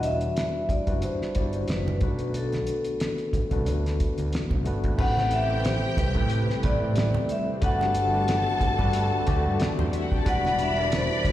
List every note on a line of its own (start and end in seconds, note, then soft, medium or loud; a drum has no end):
0.00 0.27 E1 medium
0.00 0.75 G3 medium
0.00 0.76 D4 medium
0.00 0.76 E4 medium
0.00 0.76 F#4 medium
0.00 0.76 B4 loud
0.00 closed hi-hat medium
0.04 0.72 E5 medium
0.04 muted conga soft
0.21 closed hi-hat soft
0.37 snare loud
0.37 closed hi-hat medium
0.37 muted conga soft
0.69 1.04 D5 medium
0.69 muted fingered electric bass stroke soft
0.69 kick medium
0.69 closed hi-hat medium
0.69 high conga medium
0.86 1.01 F#1 medium
0.86 1.31 G3 medium
0.86 1.31 D4 medium
0.86 1.31 E4 medium
0.86 1.32 F#4 medium
0.86 1.32 B4 medium
0.86 kick medium
0.86 closed hi-hat soft
0.86 low conga soft
1.02 1.65 C5 medium
1.02 closed hi-hat medium
1.02 muted conga soft
1.02 low conga medium
1.22 snare soft
1.34 1.64 G1 medium
1.34 1.42 F#3 medium
1.34 2.01 D4 medium
1.34 2.02 E4 medium
1.34 2.01 F#4 medium
1.34 2.02 D5 medium
1.34 kick medium
1.34 closed hi-hat medium
1.34 muted conga soft
1.34 high conga soft
1.41 2.04 G3 medium
1.53 closed hi-hat soft
1.68 1.97 F#1 medium
1.68 2.37 B4 medium
1.68 snare medium
1.68 closed hi-hat medium
1.68 muted conga soft
1.88 high conga medium
1.88 low conga medium
2.01 2.58 B1 medium
2.01 3.22 A3 medium
2.01 3.22 B3 medium
2.01 3.23 D4 medium
2.01 3.23 F#4 medium
2.01 3.23 B4 medium
2.01 kick medium
2.01 closed hi-hat medium
2.19 closed hi-hat soft
2.34 4.30 A4 medium
2.34 closed hi-hat medium
2.34 muted conga soft
2.52 snare soft
2.52 closed hi-hat soft
2.52 high conga medium
2.67 closed hi-hat medium
2.67 muted conga soft
2.85 closed hi-hat soft
3.00 snare medium
3.00 closed hi-hat medium
3.00 muted conga soft
3.18 closed hi-hat soft
3.33 muted fingered electric bass stroke soft
3.33 kick medium
3.33 closed hi-hat medium
3.33 high conga medium
3.51 3.64 C2 medium
3.51 4.56 A3 medium
3.51 4.56 B3 medium
3.51 4.56 D4 medium
3.51 4.57 F#4 medium
3.51 4.57 B4 medium
3.51 kick medium
3.51 closed hi-hat soft
3.51 low conga medium
3.66 3.95 D2 medium
3.66 closed hi-hat medium
3.66 muted conga soft
3.66 high conga soft
3.66 low conga medium
3.86 snare soft
3.86 closed hi-hat soft
4.00 kick medium
4.00 closed hi-hat medium
4.00 muted conga soft
4.00 high conga soft
4.18 4.31 D2 medium
4.18 closed hi-hat soft
4.33 snare loud
4.33 closed hi-hat medium
4.51 4.64 C2 medium
4.51 kick medium
4.51 high conga medium
4.51 low conga medium
4.65 4.84 G1 medium
4.65 4.95 A3 medium
4.65 4.96 B3 medium
4.65 4.96 D4 medium
4.65 4.96 F#4 medium
4.65 4.97 B4 medium
4.65 closed hi-hat medium
4.65 muted conga soft
4.84 4.97 G#1 medium
4.84 kick medium
4.84 closed hi-hat soft
4.98 5.79 A1 loud
4.98 7.60 C3 medium
4.98 10.22 G3 medium
4.98 5.44 A3 medium
4.98 7.60 A3 medium
4.98 5.45 C4 medium
4.98 10.22 C4 medium
4.98 5.45 E4 medium
4.98 7.25 G4 loud
4.98 5.45 G4 medium
4.98 5.45 B4 loud
4.98 5.34 F#5 loud
4.98 7.25 G5 loud
4.98 kick loud
4.98 crash medium
4.98 muted conga soft
5.17 snare soft
5.17 high conga medium
5.31 5.60 E5 loud
5.31 closed hi-hat medium
5.48 6.08 A3 medium
5.48 6.09 C4 medium
5.48 6.09 E4 medium
5.48 6.09 G4 medium
5.48 6.10 C5 medium
5.60 5.66 B4 medium
5.65 5.99 C5 medium
5.65 snare loud
5.65 closed hi-hat medium
5.97 6.13 C2 medium
5.97 6.66 B4 medium
5.97 kick medium
5.97 closed hi-hat medium
5.97 muted conga soft
5.97 high conga medium
6.14 6.44 A2 loud
6.14 6.59 A3 medium
6.14 6.59 C4 medium
6.14 6.60 E4 medium
6.14 6.60 G4 medium
6.14 6.60 B4 medium
6.14 kick medium
6.14 low conga medium
6.30 closed hi-hat medium
6.50 snare soft
6.62 6.79 A1 medium
6.62 7.54 A3 medium
6.62 7.54 C4 medium
6.62 7.54 E4 medium
6.62 7.55 G4 medium
6.62 7.55 B4 medium
6.62 7.32 D5 loud
6.62 kick medium
6.62 closed hi-hat medium
6.62 muted conga soft
6.62 high conga medium
6.82 7.10 A2 medium
6.96 snare loud
6.96 closed hi-hat medium
6.96 muted conga soft
7.14 high conga medium
7.14 low conga medium
7.29 7.46 E5 medium
7.29 closed hi-hat medium
7.29 muted conga soft
7.61 8.42 G1 loud
7.61 10.24 D3 medium
7.61 8.08 A3 medium
7.61 10.24 A3 medium
7.61 8.08 D4 medium
7.61 8.08 F#4 medium
7.61 8.09 G4 medium
7.61 9.67 A4 medium
7.61 8.09 B4 loud
7.61 9.57 F#5 loud
7.61 9.67 A5 loud
7.61 kick loud
7.61 closed hi-hat medium
7.61 muted conga soft
7.81 snare soft
7.81 high conga medium
7.94 closed hi-hat medium
8.12 8.72 A3 medium
8.12 8.72 D4 medium
8.12 8.73 F#4 medium
8.12 8.73 G4 medium
8.12 8.73 B4 medium
8.28 snare loud
8.28 closed hi-hat loud
8.28 muted conga soft
8.61 8.76 G1 loud
8.61 kick medium
8.61 closed hi-hat medium
8.61 high conga medium
8.78 9.07 G2 loud
8.78 9.22 A3 medium
8.78 9.23 D4 medium
8.78 9.23 F#4 medium
8.78 9.23 G4 medium
8.78 9.24 B4 medium
8.78 kick medium
8.78 low conga medium
8.93 closed hi-hat medium
9.26 9.43 D2 medium
9.26 10.17 A3 medium
9.26 10.18 D4 medium
9.26 10.18 F#4 medium
9.26 10.18 G4 medium
9.26 10.18 D5 loud
9.26 kick medium
9.26 closed hi-hat medium
9.26 muted conga soft
9.26 high conga medium
9.46 9.59 G2 medium
9.60 muted fingered electric bass stroke soft
9.60 snare loud
9.60 closed hi-hat medium
9.60 muted conga soft
9.78 9.92 E2 medium
9.78 9.86 C4 medium
9.78 9.86 C5 medium
9.78 high conga medium
9.78 low conga medium
9.86 9.93 D4 medium
9.86 9.93 D5 medium
9.93 10.02 E4 medium
9.93 10.02 E5 medium
9.93 closed hi-hat medium
9.93 muted conga soft
10.02 10.11 F#4 medium
10.02 10.11 F#5 medium
10.11 10.24 D#1 medium
10.11 10.19 G4 medium
10.11 10.18 G5 medium
10.11 kick medium
10.18 10.26 A4 medium
10.18 10.26 A5 medium
10.25 11.06 E1 medium
10.25 11.32 E3 medium
10.25 10.71 G3 loud
10.25 11.32 G3 medium
10.25 10.72 D4 medium
10.25 11.32 D4 medium
10.25 10.72 E4 medium
10.25 11.32 F#4 loud
10.25 10.72 F#4 medium
10.25 10.73 B4 loud
10.25 11.32 D5 loud
10.25 11.32 B5 loud
10.25 kick loud
10.25 closed hi-hat medium
10.29 10.61 F#5 loud
10.45 snare soft
10.45 high conga medium
10.59 10.92 E5 loud
10.59 closed hi-hat medium
10.59 muted conga soft
10.76 11.32 G3 medium
10.76 11.32 D4 medium
10.76 11.32 E4 medium
10.76 11.32 F#4 medium
10.76 10.84 A#4 medium
10.85 11.32 D5 medium
10.92 snare loud
10.92 closed hi-hat loud
10.92 muted conga soft
10.96 11.28 C5 medium
11.25 11.32 G1 medium
11.25 kick medium
11.25 closed hi-hat medium
11.25 high conga medium